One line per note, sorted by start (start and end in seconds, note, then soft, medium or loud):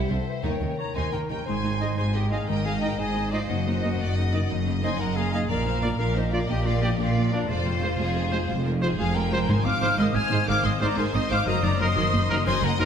0.00 0.46 C3 soft
0.00 0.26 C4 soft
0.00 0.45 E4 soft
0.00 1.49 G4 soft
0.00 0.42 C5 soft
0.00 0.44 E5 medium
0.00 0.46 E5 soft
0.09 0.17 C2 soft
0.09 0.17 G3 soft
0.09 0.16 D4 soft
0.09 0.27 A4 soft
0.09 0.46 C5 soft
0.28 0.46 C4 soft
0.28 0.44 B4 soft
0.43 0.51 D#2 soft
0.43 0.60 D#3 soft
0.43 1.49 D#3 soft
0.43 0.59 D#4 soft
0.43 1.20 A#4 soft
0.43 0.79 C#5 soft
0.43 0.79 G5 medium
0.61 0.68 D#2 soft
0.61 0.68 D#3 soft
0.61 1.29 C#4 soft
0.61 0.69 C#4 soft
0.78 1.12 A#4 soft
0.78 0.94 C#5 soft
0.78 0.94 A#5 soft
0.78 0.85 C#6 soft
0.94 1.03 D#2 soft
0.94 1.11 D#3 soft
0.94 1.11 D#4 soft
0.94 1.11 C5 soft
0.94 3.99 D#5 soft
0.94 1.13 G#5 soft
0.94 1.12 C6 soft
1.12 1.20 D#2 soft
1.12 1.20 D#3 soft
1.12 1.19 C#4 soft
1.12 1.29 A#4 soft
1.12 1.49 A#4 soft
1.12 1.20 G5 soft
1.12 1.29 A#5 soft
1.29 1.37 D#2 soft
1.29 1.36 D#3 soft
1.29 1.49 C#4 soft
1.29 1.36 D#4 soft
1.29 1.45 A#4 soft
1.29 1.47 G5 soft
1.29 1.36 A#5 soft
1.45 1.92 G#1 soft
1.45 1.91 G#2 soft
1.45 3.50 G#2 soft
1.45 1.54 G#3 soft
1.45 1.54 D#4 soft
1.45 1.96 C5 medium
1.45 1.96 G#5 medium
1.45 1.96 C6 medium
1.64 1.71 G#3 soft
1.64 2.64 C4 soft
1.64 1.71 D#4 soft
1.80 1.88 G#3 soft
1.80 1.87 D#4 soft
1.80 2.14 D#4 soft
1.80 1.88 D#4 soft
1.80 1.86 D#5 soft
1.97 2.42 G#1 medium
1.97 2.42 G#2 soft
1.97 2.05 G#3 soft
1.97 2.05 D#4 soft
1.97 2.17 C5 medium
1.97 2.30 C5 soft
1.97 2.14 G#5 medium
1.97 2.03 C6 medium
2.14 2.21 G#3 soft
2.14 2.21 D#4 soft
2.14 2.81 D#4 soft
2.14 2.31 G4 medium
2.14 2.32 D#5 soft
2.14 2.31 G5 medium
2.31 2.37 G#3 medium
2.31 2.39 G#3 soft
2.31 2.37 D#4 soft
2.31 2.39 D#4 soft
2.31 2.50 G#4 soft
2.31 2.97 C5 soft
2.31 2.37 D#5 soft
2.31 2.48 F5 soft
2.31 2.48 G#5 soft
2.47 2.92 G#1 medium
2.47 2.92 G#2 soft
2.47 3.50 D#3 soft
2.47 2.56 G#3 soft
2.47 2.56 D#4 soft
2.47 2.65 A#4 medium
2.47 2.94 D#5 soft
2.47 2.65 G5 medium
2.47 2.54 A#5 medium
2.64 2.72 G#3 soft
2.64 3.50 C4 soft
2.64 2.72 D#4 soft
2.64 2.73 G#4 soft
2.64 2.82 F5 soft
2.64 2.81 G#5 medium
2.81 2.89 G#3 soft
2.81 2.88 G#3 soft
2.81 3.14 D#4 soft
2.81 2.89 D#4 soft
2.81 2.88 D#4 medium
2.81 2.98 A#4 soft
2.81 2.88 D#5 soft
2.81 2.98 G5 soft
2.81 2.98 A#5 medium
2.98 3.42 G#1 soft
2.98 3.43 G#2 soft
2.98 3.06 G#3 soft
2.98 3.05 D#4 soft
2.98 3.32 G#4 soft
2.98 3.99 C5 soft
2.98 3.30 C5 soft
2.98 3.31 D#5 medium
2.98 3.31 G#5 medium
3.15 3.22 G#3 soft
3.15 3.82 D#4 soft
3.15 3.22 D#4 soft
3.31 3.39 G#3 soft
3.31 3.38 G#3 soft
3.31 3.38 D#4 soft
3.31 3.39 D#4 soft
3.31 3.40 F4 soft
3.31 3.50 C5 soft
3.31 3.48 D5 medium
3.31 3.38 D#5 soft
3.31 3.48 F5 medium
3.48 3.93 F#1 soft
3.48 4.49 F#2 medium
3.48 3.93 F#2 soft
3.48 3.56 A#3 soft
3.48 3.56 D#4 soft
3.48 4.64 F#4 soft
3.48 4.64 D#5 medium
3.48 4.54 F#5 soft
3.66 4.65 A#3 soft
3.66 3.73 A#3 soft
3.66 3.73 D#4 soft
3.81 3.87 A#3 soft
3.81 3.90 A#3 soft
3.81 3.88 D#4 soft
3.81 4.82 D#4 soft
3.81 3.90 D#4 soft
3.81 3.88 D#5 soft
3.99 4.43 F#1 medium
3.99 4.43 F#2 medium
3.99 4.07 A#3 soft
3.99 4.07 D#4 soft
3.99 4.16 D5 medium
3.99 4.32 D#5 soft
4.16 4.24 A#3 soft
4.16 4.24 D#4 soft
4.16 5.16 A#4 soft
4.16 4.32 D#5 medium
4.32 4.39 A#3 soft
4.32 4.39 D#4 soft
4.32 4.50 D5 medium
4.32 4.39 D#5 soft
4.32 5.00 D#5 soft
4.49 4.94 F#1 soft
4.49 4.94 F#2 soft
4.49 5.52 F#2 soft
4.49 4.57 A#3 soft
4.49 4.57 D#4 soft
4.49 5.50 D#5 soft
4.67 5.65 A#3 soft
4.67 4.73 A#3 soft
4.67 4.73 D#4 soft
4.82 4.89 A#3 soft
4.82 4.89 D#4 soft
4.82 5.51 D#4 soft
4.82 4.98 C5 medium
4.82 4.89 D#5 soft
4.82 4.99 G#5 soft
4.82 4.98 C6 medium
4.99 5.44 F#1 soft
4.99 5.44 F#2 soft
4.99 5.06 A#3 soft
4.99 5.06 D#4 soft
4.99 5.18 A#4 medium
4.99 5.32 D#5 soft
4.99 5.16 F#5 medium
4.99 5.16 A#5 medium
5.16 5.23 A#3 soft
5.16 5.24 D#4 soft
5.16 5.33 G#4 soft
5.16 6.16 A#4 soft
5.16 5.32 F5 medium
5.16 5.31 G#5 medium
5.32 5.39 A#3 soft
5.32 5.40 A#3 soft
5.32 5.39 D#4 soft
5.32 5.40 D#4 soft
5.32 5.49 G#4 medium
5.32 5.39 D#5 soft
5.32 5.51 D#5 soft
5.32 5.40 F5 medium
5.32 5.38 G#5 medium
5.48 5.94 A#1 soft
5.48 5.93 A#2 soft
5.48 7.51 A#2 soft
5.48 5.57 A#3 soft
5.48 5.57 D4 soft
5.48 5.98 A#4 medium
5.48 5.65 D5 medium
5.48 5.98 F5 medium
5.48 5.97 A#5 medium
5.66 5.73 A#3 soft
5.66 6.66 A#3 soft
5.66 5.73 D4 soft
5.66 5.83 C5 soft
5.82 5.89 A#3 soft
5.82 5.89 D4 soft
5.82 5.89 F4 soft
5.82 6.83 F4 soft
5.82 7.49 A#4 medium
5.82 5.89 D5 soft
5.98 6.43 A#1 medium
5.98 6.44 A#2 medium
5.98 6.06 A#3 soft
5.98 6.06 D4 soft
5.98 6.16 A#4 medium
5.98 6.33 D5 soft
5.98 6.16 F5 medium
5.98 6.15 A#5 medium
6.15 6.23 A#3 soft
6.15 6.23 D4 soft
6.15 6.24 D#4 soft
6.15 7.15 A#4 soft
6.15 6.32 C5 medium
6.15 6.32 D#5 medium
6.31 6.39 A#3 soft
6.31 6.39 D4 soft
6.31 6.39 F4 medium
6.31 6.41 F4 soft
6.31 6.49 D5 medium
6.31 6.39 D5 soft
6.31 6.98 D5 soft
6.31 6.50 F5 medium
6.48 6.94 A#1 medium
6.48 6.93 A#2 medium
6.48 9.50 F3 soft
6.48 6.55 A#3 soft
6.48 6.55 D4 soft
6.48 6.67 G4 medium
6.48 6.66 D#5 medium
6.48 6.66 G5 medium
6.65 6.72 A#3 soft
6.65 7.51 A#3 soft
6.65 6.73 D4 soft
6.65 6.80 F4 medium
6.65 6.82 D5 medium
6.65 6.83 F5 medium
6.81 6.89 A#3 soft
6.81 6.89 A#3 medium
6.81 6.89 D4 soft
6.81 6.89 F4 medium
6.81 7.82 F4 soft
6.81 6.89 G4 medium
6.81 6.88 D5 soft
6.81 7.00 D#5 medium
6.81 6.89 G5 medium
6.99 7.44 A#1 soft
6.99 7.43 A#2 medium
6.99 7.05 A#3 soft
6.99 7.05 D4 soft
6.99 7.32 F4 medium
6.99 7.32 D5 medium
6.99 7.32 D5 soft
6.99 7.33 F5 medium
7.15 7.22 A#3 soft
7.15 7.22 D4 soft
7.15 7.51 A#4 soft
7.32 7.39 A#3 soft
7.32 7.39 D4 soft
7.32 7.50 D4 medium
7.32 7.39 F4 soft
7.32 7.50 A#4 medium
7.32 7.38 D5 soft
7.32 7.51 D5 soft
7.32 7.50 D5 medium
7.48 7.94 F1 soft
7.48 7.93 F2 medium
7.48 9.50 F2 medium
7.48 7.55 G#3 soft
7.48 8.65 F4 medium
7.48 7.56 F4 soft
7.48 8.63 C5 medium
7.48 7.66 D5 medium
7.48 8.66 F5 medium
7.65 7.72 G#3 soft
7.65 8.65 G#3 soft
7.65 7.72 F4 soft
7.65 7.83 C5 soft
7.81 7.88 G#3 soft
7.81 7.89 G#3 soft
7.81 7.88 F4 soft
7.81 7.89 F4 soft
7.81 8.82 F4 soft
7.81 8.00 A#4 medium
7.81 7.88 C5 medium
7.98 8.43 F1 medium
7.98 8.43 F2 medium
7.98 8.05 G#3 medium
7.98 8.05 F4 soft
7.98 8.48 G#4 medium
7.98 8.32 C5 soft
8.15 8.22 G#3 soft
8.15 8.21 F4 soft
8.15 9.15 G#4 soft
8.32 8.39 G#3 soft
8.32 8.39 G#3 medium
8.32 8.38 F4 soft
8.32 8.39 F4 medium
8.32 8.38 C5 medium
8.48 8.93 F1 medium
8.48 8.93 F2 medium
8.48 9.51 C3 soft
8.48 8.55 G#3 soft
8.48 8.55 F4 medium
8.48 8.65 C5 medium
8.64 8.71 G#3 medium
8.64 9.64 G#3 soft
8.64 8.71 F4 soft
8.64 8.72 A#4 soft
8.82 8.88 G#3 soft
8.82 8.88 G#3 medium
8.82 8.89 F4 soft
8.82 8.88 F4 medium
8.82 9.51 F4 soft
8.82 9.47 G#4 medium
8.82 8.88 C5 medium
8.98 9.42 F1 medium
8.98 9.43 F2 medium
8.98 9.05 G#3 medium
8.98 9.05 F4 medium
8.98 9.14 G#4 medium
8.98 9.31 C5 soft
8.98 9.14 F5 medium
8.98 9.15 G#5 medium
9.15 9.21 G#3 soft
9.15 9.22 F4 soft
9.15 10.13 G#4 medium
9.15 9.48 A#4 medium
9.15 9.48 G5 medium
9.15 9.49 A#5 medium
9.31 9.37 G#3 medium
9.31 9.39 G#3 soft
9.31 9.37 F4 medium
9.31 9.39 F4 medium
9.31 9.97 C5 medium
9.31 9.38 C5 medium
9.48 9.55 G#1 medium
9.48 9.55 G#2 medium
9.48 9.95 G#2 medium
9.48 11.49 G#2 medium
9.48 9.64 D#3 medium
9.48 9.64 G#3 medium
9.48 12.42 C5 medium
9.48 9.56 C5 medium
9.48 9.66 G#5 medium
9.48 9.66 C6 medium
9.64 9.72 G#1 medium
9.64 9.71 G#2 soft
9.64 10.64 G#3 soft
9.64 9.71 C4 medium
9.64 9.71 D#4 soft
9.64 9.97 F5 medium
9.64 9.97 D6 medium
9.64 9.98 F6 medium
9.81 9.88 G#1 soft
9.81 9.88 G#2 medium
9.81 9.87 G#3 medium
9.81 9.88 G#3 soft
9.81 9.88 C4 medium
9.81 9.87 D#4 medium
9.81 10.80 D#4 soft
9.81 9.88 C5 medium
9.98 10.05 G#1 medium
9.98 10.05 G#2 medium
9.98 10.14 D#3 medium
9.98 10.14 G#3 medium
9.98 10.17 D#5 medium
9.98 10.05 C6 medium
9.98 10.15 D#6 medium
10.14 10.21 G#1 soft
10.14 10.21 G#2 soft
10.14 10.21 C4 soft
10.14 10.21 D#4 soft
10.14 11.14 G#4 soft
10.14 10.48 G#5 medium
10.14 10.47 F6 medium
10.14 10.48 G#6 medium
10.30 10.38 G#1 medium
10.30 10.37 G#2 medium
10.30 10.37 G#3 soft
10.30 10.37 G#3 medium
10.30 10.37 C4 soft
10.30 10.37 D#4 medium
10.30 10.37 C5 medium
10.47 10.55 G#1 medium
10.47 10.55 G#2 medium
10.47 10.63 D#3 medium
10.47 11.49 D#3 medium
10.47 10.63 G#3 medium
10.47 10.65 F5 medium
10.47 10.64 D6 medium
10.47 10.64 F6 loud
10.64 10.71 G#1 medium
10.64 10.71 G#2 medium
10.64 11.49 G#3 soft
10.64 10.70 C4 medium
10.64 10.70 D#4 medium
10.64 10.81 D#5 medium
10.64 10.71 C6 medium
10.64 10.81 D#6 medium
10.80 10.88 G#1 medium
10.80 10.88 G#2 soft
10.80 10.87 G#3 medium
10.80 10.87 C4 medium
10.80 10.87 D#4 medium
10.80 11.79 D#4 medium
10.80 10.87 C5 medium
10.80 10.99 D5 medium
10.80 10.98 A#5 medium
10.80 10.97 D6 medium
10.96 11.04 G#1 medium
10.96 11.04 G#2 medium
10.96 11.12 D#3 medium
10.96 11.13 G#3 medium
10.96 11.30 C5 soft
10.96 11.17 C5 medium
10.96 11.15 G#5 medium
10.96 11.04 C6 medium
11.13 11.21 G#1 medium
11.13 11.21 G#2 soft
11.13 11.20 C4 medium
11.13 11.20 D#4 medium
11.13 11.49 G#4 medium
11.13 11.31 D#5 medium
11.13 11.31 C6 medium
11.13 11.20 D#6 medium
11.30 11.37 G#1 medium
11.30 11.38 G#2 soft
11.30 11.37 G#3 medium
11.30 11.36 G#3 medium
11.30 11.37 C4 medium
11.30 11.37 D#4 medium
11.30 11.36 C5 medium
11.30 11.47 F5 medium
11.30 11.47 D6 medium
11.30 11.47 F6 medium
11.45 11.53 F#1 medium
11.45 12.46 F#2 medium
11.45 11.54 F#2 medium
11.45 11.62 D#3 medium
11.45 11.62 F#3 medium
11.45 11.64 D#5 medium
11.45 11.62 A#5 medium
11.45 11.64 D#6 medium
11.63 11.70 F#1 medium
11.63 11.71 F#2 medium
11.63 11.70 A#3 soft
11.63 12.62 A#3 medium
11.63 11.70 D#4 medium
11.63 11.80 D5 medium
11.63 11.80 A#5 medium
11.63 11.81 D6 medium
11.79 11.87 F#1 medium
11.79 11.87 F#2 medium
11.79 11.86 F#3 medium
11.79 11.87 F#3 medium
11.79 11.86 A#3 soft
11.79 12.79 D#4 medium
11.79 11.87 D#4 medium
11.79 11.86 A#4 medium
11.79 12.46 D#5 medium
11.79 12.45 C6 medium
11.79 12.20 D#6 loud
11.95 12.03 F#1 medium
11.95 12.04 F#2 medium
11.95 12.11 D#3 medium
11.95 12.11 F#3 medium
12.12 12.21 F#1 medium
12.12 12.20 F#2 medium
12.12 12.19 A#3 soft
12.12 12.19 D#4 medium
12.12 12.85 A#4 medium
12.29 12.37 F#1 medium
12.29 12.36 F#2 medium
12.29 12.36 F#3 soft
12.29 12.36 F#3 medium
12.29 12.36 A#3 soft
12.29 12.36 D#4 medium
12.29 12.36 A#4 medium
12.45 12.53 F#1 medium
12.45 12.52 F#2 medium
12.45 12.85 F#2 medium
12.45 12.61 D#3 medium
12.45 12.61 F#3 medium
12.45 12.66 C5 medium
12.45 12.85 D#5 medium
12.45 12.63 G#5 medium
12.45 12.63 C6 loud
12.62 12.69 F#1 medium
12.62 12.69 F#2 medium
12.62 12.69 A#3 medium
12.62 12.85 A#3 medium
12.62 12.69 D#4 medium
12.62 12.81 A#4 medium
12.62 12.80 F#5 medium
12.62 12.80 A#5 medium
12.78 12.85 F#1 medium
12.78 12.85 F#2 medium
12.78 12.85 F#3 soft
12.78 12.85 F#3 medium
12.78 12.85 A#3 medium
12.78 12.85 D#4 medium
12.78 12.85 D#4 soft
12.78 12.85 A#4 medium
12.78 12.85 C5 medium
12.78 12.85 G#5 medium
12.78 12.85 C6 medium